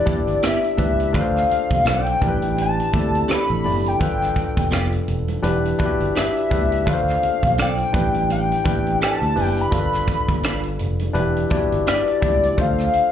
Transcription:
Already playing: tine electric piano D4 E4 G4 B4, analog synth lead D5
0.06 tine electric piano D4 E4 G4 D5, kick, closed hi-hat, muted conga, high conga
0.27 fingered electric bass G1, closed hi-hat
0.43 clean electric guitar B3 E4 G4 D5, analog synth lead E5, cross-stick, closed hi-hat
0.64 closed hi-hat
0.77 fingered electric bass C#2, tine electric piano D4 E4 G4 B4, kick, closed hi-hat, muted conga, high conga, low conga
1.00 closed hi-hat
1.13 fingered electric bass D2, tine electric piano D4 F4 A4 B4, kick, closed hi-hat
1.17 tine electric piano C5, analog synth lead F5
1.36 cross-stick, closed hi-hat
1.50 closed hi-hat, muted conga
1.71 fingered electric bass C2, kick, closed hi-hat, high conga
1.85 fingered electric bass B1, clean electric guitar C4 F4 A4 D5, analog synth lead G5, cross-stick, closed hi-hat, muted conga
2.06 closed hi-hat
2.21 fingered electric bass A1, tine electric piano D4 E4 G4 A#4, kick, closed hi-hat, muted conga
2.28 tine electric piano B4
2.42 closed hi-hat, low conga
2.57 closed hi-hat, muted conga
2.62 analog synth lead A5
2.80 closed hi-hat
2.93 fingered electric bass D2, tine electric piano C4 E4 G4 A4, kick, closed hi-hat, muted conga, high conga
2.99 tine electric piano D4
3.15 closed hi-hat
3.28 clean electric guitar D4 G4 A4 D5, cross-stick, closed hi-hat, muted conga
3.33 analog synth lead B5
3.50 fingered electric bass A1, closed hi-hat
3.64 fingered electric bass F#1, tine electric piano D4 E4 G4 D5, open hi-hat, high conga, low conga
3.86 analog synth lead G5, closed hi-hat
3.99 fingered electric bass G1, tine electric piano D4 F4 A4 B4, kick, closed hi-hat, muted conga
4.22 cross-stick, closed hi-hat
4.36 kick, closed hi-hat
4.57 fingered electric bass F1, kick, closed hi-hat, high conga
4.71 clean electric guitar B3 F4 G4 D5, cross-stick, closed hi-hat, muted conga
4.93 closed hi-hat
5.08 fingered electric bass E1, closed hi-hat, muted conga
5.28 closed hi-hat, low conga
5.42 fingered electric bass E1, tine electric piano D4 E4 G4 B4, closed hi-hat, muted conga
5.65 closed hi-hat
5.79 tine electric piano D4 E4 F#4 B4, kick, closed hi-hat, muted conga, high conga
5.86 tine electric piano G4
6.00 fingered electric bass G1, closed hi-hat
6.15 clean electric guitar D4 G4 B4 D5, analog synth lead E5, cross-stick, closed hi-hat, muted conga
6.37 closed hi-hat
6.50 fingered electric bass C#2, tine electric piano D4 E4 G4 B4, kick, closed hi-hat, high conga, low conga
6.72 closed hi-hat
6.86 fingered electric bass D2, tine electric piano D4 F4 A4 B4, analog synth lead F5, kick, closed hi-hat
6.93 tine electric piano C5
7.08 cross-stick, closed hi-hat
7.23 closed hi-hat, muted conga
7.43 fingered electric bass B1, kick, closed hi-hat, high conga
7.58 clean electric guitar C4 F4 A4 D5, analog synth lead G5, cross-stick, closed hi-hat
7.78 closed hi-hat
7.93 fingered electric bass A1, tine electric piano D4 E4 G4 B4, kick, closed hi-hat, muted conga
8.14 closed hi-hat, low conga
8.30 analog synth lead G5, closed hi-hat, muted conga
8.52 closed hi-hat
8.64 fingered electric bass A1, tine electric piano D4 E4 G4 B4, kick, closed hi-hat, muted conga, high conga
8.87 closed hi-hat
9.02 clean electric guitar D4 G4 A4 D5, analog synth lead A5, cross-stick, closed hi-hat
9.22 fingered electric bass D2, closed hi-hat
9.35 fingered electric bass F#1, tine electric piano D4 E4 G4 B4, open hi-hat, high conga, low conga
9.44 analog synth lead G5
9.58 analog synth lead B5, closed hi-hat
9.71 fingered electric bass G1, tine electric piano D4 F4 A4 A#4, kick, closed hi-hat, muted conga
9.79 tine electric piano B4
9.93 cross-stick, closed hi-hat
10.08 kick, closed hi-hat, muted conga
10.28 fingered electric bass G1, kick, closed hi-hat, high conga
10.43 clean electric guitar D4 F4 B4 D5, cross-stick, closed hi-hat, muted conga
10.63 closed hi-hat
10.79 fingered electric bass F1, closed hi-hat, muted conga
10.99 closed hi-hat, low conga
11.13 fingered electric bass E1, tine electric piano D4 E4 G4 B4, closed hi-hat
11.37 closed hi-hat
11.50 tine electric piano D4 E4 F#4 D5, kick, closed hi-hat, muted conga, high conga
11.57 tine electric piano G4
11.72 fingered electric bass G1, closed hi-hat
11.87 clean electric guitar D4 G4 B4 D5, analog synth lead D5, cross-stick, closed hi-hat, muted conga
12.08 closed hi-hat
12.21 fingered electric bass C#2, tine electric piano D4 E4 G4 D5, kick, closed hi-hat, muted conga, high conga, low conga
12.43 closed hi-hat
12.57 fingered electric bass D2, tine electric piano D4 F4 A4 C5, analog synth lead F5, kick, closed hi-hat, muted conga
12.78 cross-stick, closed hi-hat
12.93 closed hi-hat

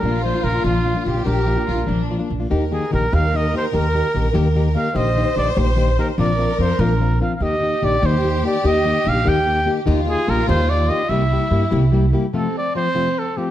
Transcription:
Already playing: trumpet A#4
0.02 upright bass A#1, nylon-string guitar A#2 F3 A#3 D4 F4, violin section F4
0.24 nylon-string guitar F3 A#3 D4 F4, trumpet C5
0.35 nylon-string guitar A#3 D4 F4
0.44 upright bass A#1, trumpet A#4
0.55 nylon-string guitar A#3 D4 F4
0.64 upright bass A#1, nylon-string guitar A#2 F3 A#3 D4 F4, trumpet F4
0.86 nylon-string guitar F3 A#3 D4 F4
0.95 nylon-string guitar A#3 D4 F4
1.06 upright bass A#1, trumpet F4, violin section G4
1.15 nylon-string guitar A#3 D4 F4
1.25 upright bass A#1, nylon-string guitar A#2 F3 A#3 D4 F4, trumpet A#4
1.45 nylon-string guitar F3 A#3 D4 F4
1.56 nylon-string guitar A#3 D4 F4
1.67 upright bass A#1, violin section F4
1.76 nylon-string guitar A#3 D4 F4
1.86 upright bass A#1, nylon-string guitar A#2 F3 A#3 D4 F4, violin section D4
2.09 nylon-string guitar F3 A#3 D4 F4
2.19 nylon-string guitar A#3 D4 F4
2.30 upright bass A#1
2.40 nylon-string guitar A#3 D4 F4
2.50 upright bass D#2, nylon-string guitar D#3 A#3 D#4 G4, violin section A#4
2.71 nylon-string guitar D#3 A#3 D#4 G4, trumpet G#4
2.91 upright bass A#1, nylon-string guitar D#3 A#3 D#4 G4, trumpet A#4
3.12 upright bass D#2, nylon-string guitar D#3 A#3 D#4 G4, trumpet F5
3.33 nylon-string guitar D#3 A#3 D#4 G4, trumpet D#5
3.53 nylon-string guitar D#3 A#3 D#4 G4
3.57 trumpet C5
3.72 upright bass D#2, nylon-string guitar D#3 A#3 D#4 G4, trumpet A#4
3.94 nylon-string guitar D#3 A#3 D#4 G4
4.15 upright bass A#1, nylon-string guitar D#3 A#3 D#4 G4
4.33 upright bass D#2, nylon-string guitar D#3 A#3 D#4 G4
4.55 nylon-string guitar D#3 A#3 D#4 G4
4.75 nylon-string guitar D#3 A#3 D#4 G4, trumpet F5
4.94 upright bass A#1, nylon-string guitar A#2 D#3 A#3 D#4 G4, violin section C5, trumpet D#5
5.16 nylon-string guitar D#3 A#3 D#4 G4
5.36 upright bass A#1, nylon-string guitar D#3 A#3 D#4 G4, trumpet D5
5.51 trumpet D5
5.56 upright bass A#1, nylon-string guitar A#2 D#3 A#3 D#4 G4, trumpet C5
5.76 nylon-string guitar D#3 A#3 D#4 G4
5.98 nylon-string guitar D#3 A#3 D#4 G4, trumpet A#4
6.18 upright bass A#1, nylon-string guitar A#2 F3 C4 D4 F4, violin section A#4, trumpet D5
6.38 nylon-string guitar F3 C4 D4 F4
6.59 upright bass F2, nylon-string guitar F3 C4 D4 F4, trumpet C5
6.79 upright bass A#1, nylon-string guitar A#2 F3 C4 D4 F4, trumpet A#4
7.00 nylon-string guitar F3 C4 D4 F4
7.20 nylon-string guitar F3 C4 D4 F4, trumpet F5
7.35 trumpet F5
7.40 upright bass D#2, nylon-string guitar D#3 A#3 D#4 G4, violin section G4, trumpet D#5
7.61 nylon-string guitar D#3 A#3 D#4 G4
7.82 upright bass A#1, nylon-string guitar D#3 A#3 D#4 G4, trumpet D5
8.02 upright bass D#2, nylon-string guitar D#3 A#3 D#4 G4, trumpet C5
8.23 nylon-string guitar D#3 A#3 D#4 G4
8.43 nylon-string guitar D#3 A#3 D#4 G4, trumpet D5
8.64 upright bass D#2, nylon-string guitar D#3 A#3 D#4 G4, trumpet D#5
8.85 nylon-string guitar D#3 A#3 D#4 G4
9.04 upright bass A#1, nylon-string guitar D#3 A#3 D#4 G4
9.09 trumpet F5
9.24 upright bass D#2, nylon-string guitar D#3 A#3 D#4 G4
9.29 trumpet G5
9.46 nylon-string guitar D#3 A#3 D#4 G4
9.66 nylon-string guitar D#3 A#3 D#4 G4
9.86 upright bass D#2, nylon-string guitar D#3 A#3 D#4 G4, violin section F4
10.06 nylon-string guitar D#3 A#3 D#4 G4, trumpet G#4
10.27 upright bass A#1, nylon-string guitar D#3 A#3 D#4 G4, trumpet A#4
10.47 upright bass D#2, nylon-string guitar D#3 A#3 D#4 G4, trumpet C5
10.69 nylon-string guitar D#3 A#3 D#4 G4, trumpet D5
10.89 nylon-string guitar D#3 A#3 D#4 G4, trumpet D#5
11.09 upright bass C2, nylon-string guitar C3 G3 A#3 E4 G4, violin section E4, trumpet E5
11.31 nylon-string guitar G3 A#3 E4 G4
11.51 upright bass G2, nylon-string guitar G3 A#3 E4 G4
11.71 upright bass C2, nylon-string guitar C3 G3 A#3 E4 G4
11.92 nylon-string guitar G3 A#3 E4 G4
12.12 nylon-string guitar G3 A#3 E4 G4
12.33 nylon-string guitar F2 C3 F3 A3 C4 F4, violin section C4, trumpet A4
12.58 trumpet D5
12.75 nylon-string guitar F3 A3 C4 F4, trumpet C5
12.94 nylon-string guitar F2 C3 F3 A3 C4 F4
13.19 trumpet A4
13.37 nylon-string guitar F3 A3 C4 F4, trumpet G4

